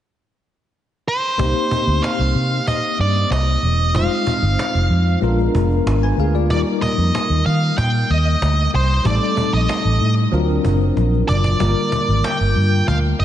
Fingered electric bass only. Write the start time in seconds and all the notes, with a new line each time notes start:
1.39 C2
1.87 D2
2.19 C2
2.35 C3
2.99 G2
3.31 C2
3.62 E1
3.95 F1
4.42 G1
4.74 F1
4.90 F2
5.22 A#1
5.55 F1
5.86 G#1
6.17 D2
6.50 D#2
6.98 F2
7.29 D#2
7.46 D#3
7.78 A#2
8.10 D#2
8.42 D2
8.74 C2
9.05 A1
9.53 A#1
9.85 A1
10.01 A2
10.32 D2
10.65 F#1
10.96 A#1
11.29 F#1
11.60 G1
12.08 G#1
12.40 G1
12.56 G2
12.88 D2
13.20 G1